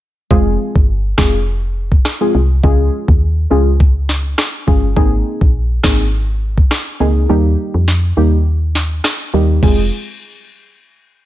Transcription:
0.30 0.57 F1 loud
0.30 0.84 G#3 loud
0.30 0.85 C4 medium
0.30 0.85 F4 medium
0.30 0.85 G#4 loud
0.30 kick loud
0.75 1.14 G1 medium
0.75 kick medium
1.18 2.01 F1 medium
1.18 1.38 G#3 medium
1.18 1.38 C4 medium
1.18 1.38 F4 medium
1.18 1.39 G#4 medium
1.18 kick medium
1.18 cross-stick medium
1.18 snare loud
1.92 kick medium
2.05 cross-stick medium
2.05 snare loud
2.21 2.40 G#3 medium
2.21 2.40 C4 medium
2.21 2.40 F4 medium
2.21 2.40 G#4 medium
2.35 2.61 C2 loud
2.63 2.90 C#2 loud
2.63 3.17 G#3 loud
2.63 3.17 C#4 medium
2.63 3.18 F4 medium
2.63 3.18 G#4 loud
2.63 kick loud
3.08 3.47 D#2 medium
3.08 kick loud
3.50 4.34 C#2 medium
3.50 3.71 G#3 medium
3.50 3.71 C#4 medium
3.50 3.71 F4 medium
3.50 3.71 G#4 medium
3.80 kick medium
4.09 snare medium
4.38 cross-stick medium
4.38 snare loud
4.67 4.94 G1 medium
4.67 4.88 G#3 medium
4.67 4.88 C#4 medium
4.67 4.88 F4 medium
4.67 4.88 G#4 medium
4.67 kick medium
4.96 5.23 G#1 loud
4.96 5.50 A#3 medium
4.96 5.50 C4 medium
4.96 5.50 D#4 medium
4.96 5.51 G#4 loud
4.96 kick loud
5.41 5.80 A#1 medium
5.41 kick medium
5.83 6.67 G#1 medium
5.83 6.04 A#3 medium
5.83 6.04 C4 medium
5.83 6.04 D#4 medium
5.83 6.04 G#4 medium
5.83 kick medium
5.83 cross-stick medium
5.83 snare loud
6.58 kick medium
6.71 cross-stick medium
6.71 snare loud
7.00 7.26 C#2 medium
7.00 7.27 A#3 medium
7.00 7.27 C4 medium
7.00 7.27 D#4 medium
7.00 7.28 G#4 medium
7.29 7.56 D#2 loud
7.29 7.83 G3 loud
7.29 7.83 A#3 medium
7.29 7.83 D#4 medium
7.29 7.84 G4 loud
7.74 8.13 F2 medium
7.88 snare medium
8.17 9.00 D#2 medium
8.17 8.37 G3 medium
8.17 8.37 A#3 medium
8.17 8.37 D#4 medium
8.17 8.38 G4 medium
8.75 snare medium
9.04 cross-stick medium
9.04 snare loud
9.34 9.60 D#2 loud
9.34 9.60 G3 medium
9.34 9.61 A#3 medium
9.34 9.61 D#4 medium
9.34 9.61 G4 medium
9.62 9.90 F1 loud
9.62 9.85 G#3 medium
9.62 9.85 C4 medium
9.62 9.85 F4 medium
9.62 9.85 G#4 loud
9.62 kick loud
9.62 crash medium

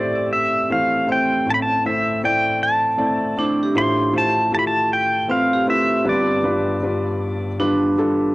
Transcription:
0.00 1.43 A1 medium
0.00 1.43 A2 medium
0.00 0.70 A3 medium
0.00 0.70 C4 medium
0.00 1.07 C4 medium
0.00 1.08 E4 medium
0.00 1.40 G4 medium
0.00 3.79 A4 medium
0.00 0.70 C5 medium
0.00 0.33 D5 medium
0.33 0.72 E5 medium
0.70 1.03 E3 medium
0.70 1.02 A3 medium
0.70 1.03 C4 medium
0.70 1.03 C5 medium
0.70 1.11 F5 medium
1.07 1.72 A3 medium
1.07 1.73 C4 medium
1.07 3.10 C4 medium
1.07 1.73 E4 medium
1.07 1.73 C5 medium
1.12 1.50 G5 medium
1.46 3.72 A1 medium
1.46 3.72 A2 medium
1.50 1.54 A5 medium
1.50 1.61 B5 medium
1.62 1.84 A5 medium
1.85 2.18 A3 medium
1.85 2.18 C4 medium
1.85 2.18 E4 medium
1.85 2.18 C5 medium
1.85 2.21 E5 medium
2.23 2.88 A3 medium
2.23 2.88 C4 medium
2.23 2.88 E4 medium
2.23 2.89 D5 medium
2.23 2.64 G5 medium
2.63 3.45 A5 medium
2.98 3.31 A3 medium
2.98 3.32 C4 medium
2.98 3.32 E4 medium
2.98 3.32 D5 medium
3.37 3.74 A3 medium
3.37 3.76 C4 medium
3.37 4.11 D4 medium
3.37 3.73 E4 medium
3.37 3.74 C5 medium
3.63 4.33 G4 soft
3.75 6.02 A1 medium
3.75 6.01 A2 medium
3.75 4.08 A3 medium
3.75 4.08 E4 medium
3.75 4.08 F4 medium
3.75 4.08 C5 medium
3.75 4.17 C6 loud
4.12 4.46 A3 medium
4.12 4.46 E4 medium
4.12 4.46 F4 medium
4.12 4.47 C5 medium
4.18 4.52 A5 medium
4.52 5.17 A3 medium
4.52 5.18 E4 medium
4.52 5.17 F4 medium
4.52 5.17 G4 medium
4.52 4.58 A5 loud
4.59 4.66 B5 medium
4.67 4.92 A5 loud
4.93 5.32 G5 loud
5.28 5.61 A3 medium
5.28 5.62 C4 medium
5.28 6.41 C4 medium
5.28 5.62 F4 medium
5.28 5.62 B4 medium
5.28 5.66 F5 loud
5.53 6.62 G4 medium
5.67 6.06 A3 medium
5.67 6.06 E4 medium
5.67 6.03 F4 medium
5.67 6.04 B4 medium
5.67 6.08 E5 medium
6.04 8.32 G1 medium
6.04 8.32 G2 medium
6.04 6.38 G3 medium
6.04 6.38 D4 medium
6.04 6.38 F4 medium
6.04 6.38 B4 medium
6.09 7.57 D5 medium
6.43 6.77 G3 medium
6.43 6.77 D4 medium
6.43 6.77 F4 medium
6.43 6.77 B4 medium
6.82 7.48 G3 medium
6.82 7.47 D4 medium
6.82 7.48 F4 medium
6.82 7.48 B4 medium
7.60 7.92 G3 medium
7.60 7.92 D4 medium
7.60 8.35 D4 medium
7.60 7.93 F4 medium
7.60 7.92 B4 medium
7.98 8.35 G3 medium
7.98 8.35 D4 medium
7.98 8.35 F4 medium
7.98 8.35 A4 medium

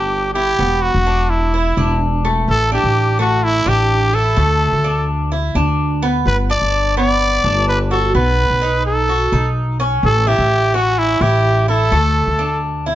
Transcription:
0.00 0.55 G1 medium
0.00 0.34 D4 medium
0.00 0.34 G4 medium
0.34 0.58 E4 medium
0.34 0.84 G4 medium
0.59 0.92 E1 medium
0.59 1.05 B3 medium
0.82 1.31 F#4 medium
0.94 1.73 E1 medium
1.07 1.52 D4 medium
1.30 2.01 E4 medium
1.54 1.77 E4 medium
1.77 2.44 E1 medium
1.77 2.23 D4 medium
2.25 2.70 A3 medium
2.48 2.82 A1 medium
2.48 2.71 A4 medium
2.72 3.18 D4 medium
2.72 3.17 G4 medium
2.83 3.62 A1 medium
3.19 3.65 A3 medium
3.19 3.45 F#4 medium
3.44 3.70 E4 medium
3.66 4.33 A1 medium
3.66 4.12 D4 medium
3.66 4.16 G4 medium
4.13 4.36 E4 medium
4.13 5.09 A4 medium
4.37 4.71 D2 medium
4.37 4.83 A3 medium
4.72 5.51 D2 medium
4.84 5.30 D4 medium
5.32 5.55 E4 medium
5.55 6.22 D2 medium
5.55 6.01 D4 medium
6.02 6.48 B3 medium
6.25 6.59 G1 medium
6.25 6.37 B4 medium
6.50 6.95 D4 medium
6.50 6.94 D5 medium
6.61 7.40 G1 medium
6.97 7.43 B3 medium
6.97 7.64 D5 loud
7.44 8.11 G1 medium
7.44 7.90 D4 medium
7.69 7.79 B4 medium
7.91 8.14 F#4 medium
7.91 8.13 A4 medium
8.14 8.48 B1 medium
8.14 8.60 B3 medium
8.14 8.82 B4 medium
8.50 9.28 B1 medium
8.62 9.07 D#4 medium
8.86 9.53 A4 medium
9.09 9.32 F#4 medium
9.32 9.99 B1 medium
9.32 9.78 D#4 medium
9.80 10.25 C#4 medium
10.03 10.37 A1 medium
10.03 10.29 A4 loud
10.27 10.73 E4 medium
10.27 10.76 G4 loud
10.38 11.17 A1 medium
10.74 11.20 C#4 medium
10.74 11.00 F#4 medium
10.99 11.23 E4 medium
11.20 11.88 A1 medium
11.20 11.67 E4 medium
11.20 11.69 G4 medium
11.68 11.91 E4 medium
11.68 12.59 A4 medium
11.91 12.25 D2 medium
11.91 12.38 A3 medium
12.27 12.95 D2 medium
12.39 12.85 D4 medium
12.86 12.95 E4 medium

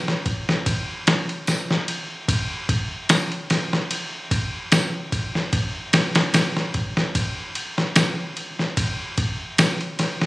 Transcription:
0.08 snare medium
0.26 kick loud
0.26 ride medium
0.49 snare medium
0.66 kick loud
0.66 ride medium
1.07 snare loud
1.07 ride medium
1.29 ride soft
1.47 snare soft
1.47 ride medium
1.47 tambourine medium
1.71 snare soft
1.88 ride medium
2.28 kick loud
2.28 ride medium
2.69 kick medium
2.69 ride medium
3.09 snare loud
3.09 ride medium
3.09 tambourine medium
3.32 ride soft
3.50 snare medium
3.50 ride medium
3.73 snare soft
3.91 ride medium
4.31 kick medium
4.31 ride medium
4.72 snare loud
4.72 ride medium
4.72 tambourine medium
5.12 kick medium
5.12 ride medium
5.35 snare soft
5.53 kick loud
5.53 ride medium
5.93 snare loud
5.93 ride medium
6.15 snare loud
6.15 ride medium
6.34 snare loud
6.34 ride medium
6.34 tambourine medium
6.57 snare medium
6.74 kick loud
6.74 ride medium
6.97 snare medium
7.15 kick loud
7.15 ride medium
7.55 ride medium
7.78 snare soft
7.96 snare loud
7.96 ride medium
7.96 tambourine medium
8.37 ride medium
8.59 snare soft
8.77 kick loud
8.77 ride medium
9.18 kick loud
9.18 ride medium
9.58 snare loud
9.58 ride loud
9.58 tambourine medium
9.81 ride soft
9.99 snare medium
9.99 ride medium
10.21 snare soft

